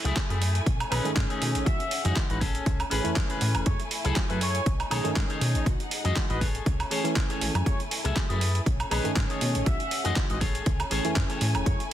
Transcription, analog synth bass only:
0.05 0.12 C#2 medium
0.30 0.60 F#2 medium
0.66 0.84 B1 medium
0.91 1.00 B1 medium
1.05 1.14 G#2 soft
1.16 1.25 G#2 loud
1.42 1.57 B2 medium
1.55 1.63 A1 medium
1.66 1.75 B1 medium
2.05 2.13 F#2 medium
2.30 2.60 A1 loud
2.66 2.84 C#2 medium
2.91 3.00 A1 medium
3.05 3.14 F#2 soft
3.16 3.25 F#2 medium
3.42 3.56 A2 medium
3.55 3.62 E1 medium
3.66 3.75 F#2 medium
4.05 4.13 C#2 medium
4.30 4.60 F#2 medium
4.66 4.84 B1 loud
4.91 5.00 B1 medium
5.05 5.14 G#2 soft
5.16 5.25 G#2 loud
5.41 5.56 B2 medium
5.55 5.62 A1 medium
5.66 5.75 B1 loud
6.05 6.12 F#2 medium
6.30 6.60 A1 loud
6.66 6.84 C#2 loud
7.41 7.50 A1 medium
7.55 7.62 F#2 medium
7.66 7.75 F#2 loud
8.05 8.12 C#2 medium
8.30 8.60 F#2 loud
8.66 8.84 B1 loud
8.91 9.00 B1 medium
9.05 9.14 G#2 soft
9.16 9.25 G#2 loud
9.42 9.57 B2 medium
9.55 9.63 A1 medium
9.66 9.75 B1 medium
10.05 10.13 F#2 medium
10.30 10.60 A1 loud
10.66 10.84 C#2 medium
10.91 11.00 A1 medium
11.05 11.14 F#2 soft
11.16 11.25 F#2 medium
11.41 11.56 A2 medium
11.55 11.62 E1 medium
11.66 11.75 F#2 loud

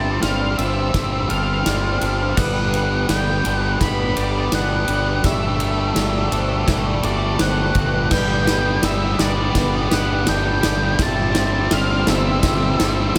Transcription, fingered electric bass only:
0.00 0.19 G1 medium
0.23 0.56 G1 medium
0.58 0.91 G1 medium
0.94 1.27 G1 medium
1.30 1.63 G1 medium
1.66 1.99 G1 medium
2.02 2.35 G1 medium
2.37 3.05 G1 medium
3.09 3.42 G1 medium
3.45 3.78 G1 medium
3.81 4.14 G1 medium
4.17 4.50 G1 medium
4.52 4.86 G1 medium
4.88 5.21 G1 medium
5.24 5.92 G1 medium
5.96 6.29 G1 medium
6.32 6.65 G1 medium
6.68 7.01 G1 medium
7.04 7.37 G1 medium
7.40 7.73 G1 medium
7.75 8.08 G1 medium
8.11 8.79 G1 medium
8.83 9.16 G1 medium
9.19 9.52 G1 medium
9.55 9.88 G1 medium
9.92 10.25 G1 medium
10.28 10.61 G1 medium
10.64 10.97 G1 medium
10.99 11.67 G1 medium
11.72 12.04 G1 medium
12.08 12.40 G1 medium
12.43 12.76 G1 medium
12.80 13.12 G1 medium
13.15 13.18 G1 medium

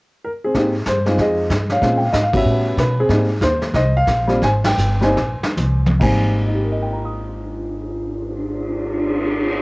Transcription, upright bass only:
0.55 0.85 G#2 medium
0.86 1.17 G2 medium
1.18 1.49 F2 medium
1.50 1.81 G2 medium
1.82 2.12 A#2 medium
2.13 2.44 G#2 medium
2.45 2.76 A2 medium
2.77 3.08 B2 medium
3.09 3.40 G#2 medium
3.41 3.73 D#2 medium
3.73 4.06 C2 medium
4.07 4.41 A#1 medium
4.42 4.77 G#1 medium
4.78 5.15 G1 medium
5.17 5.40 A#1 medium
5.41 muted upright bass stroke soft
5.57 6.00 C2 medium
6.01 9.62 G#1 medium

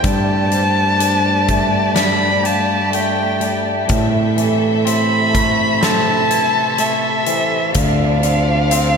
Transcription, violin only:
0.06 1.96 A5 medium
1.97 2.47 B5 medium
2.46 2.95 A5 medium
2.94 3.66 G5 medium
4.88 5.85 B5 medium
5.83 6.82 A5 medium
6.80 7.75 E5 medium
7.76 8.97 F5 medium

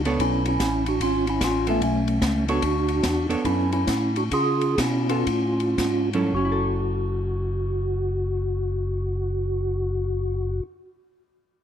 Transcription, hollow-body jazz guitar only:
0.06 0.57 B3 medium
0.06 0.57 D4 medium
0.06 0.57 A4 medium
0.06 0.58 C#5 medium
1.67 1.80 B3 medium
1.67 1.80 F4 medium
1.67 1.80 A4 medium
2.49 2.61 B3 medium
2.49 2.61 D4 medium
2.49 2.62 A4 medium
2.49 2.62 C#5 medium
3.29 3.84 B3 medium
3.29 3.84 D4 medium
3.29 3.84 A4 medium
3.29 3.84 C#5 medium
5.09 5.24 B3 medium
5.09 5.25 F4 medium
5.09 5.25 A4 medium
6.14 6.25 F#3 medium
6.14 6.32 C#4 medium
6.14 6.32 E4 medium
6.14 6.32 A4 medium
6.27 10.59 F#3 medium
6.37 10.69 C#4 medium
6.45 10.78 E4 medium
6.52 10.84 A4 medium

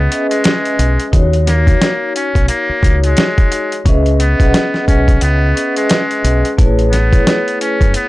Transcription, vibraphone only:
0.00 0.10 C#4 loud
0.00 0.11 G#4 medium
0.00 0.11 B4 medium
0.00 0.12 D#5 medium
0.00 0.13 E5 loud
0.00 1.15 G#5 medium
0.10 1.00 C#4 medium
0.10 1.00 G#4 medium
0.10 1.00 B4 medium
0.10 1.01 D#5 medium
0.10 1.01 E5 medium
1.12 1.57 D#4 medium
1.12 1.58 F#4 medium
1.12 1.59 C#5 loud
1.65 2.67 D#4 medium
1.65 2.68 F#4 medium
1.65 2.69 C#5 medium
2.82 3.72 D#4 medium
2.82 3.73 F#4 medium
2.82 3.74 C#5 medium
3.85 4.31 C#4 medium
3.85 4.31 G#4 medium
3.85 4.31 B4 medium
3.85 4.32 D#5 medium
3.85 4.32 E5 loud
4.39 5.40 C#4 medium
4.39 5.41 G#4 medium
4.39 5.41 B4 medium
4.39 5.41 D#5 medium
4.39 5.42 F#5 medium
5.55 6.45 C#4 medium
5.55 6.45 G#4 medium
5.55 6.46 B4 medium
5.55 6.46 D#5 medium
5.55 6.46 E5 medium
6.57 7.03 A3 medium
6.57 7.03 E4 medium
6.57 7.04 G#4 medium
6.57 7.04 B4 medium
6.57 7.04 C#5 medium
7.11 8.08 A3 medium
7.11 8.08 E4 medium
7.11 8.08 G#4 medium
7.11 8.08 B4 medium
7.11 8.08 C#5 medium

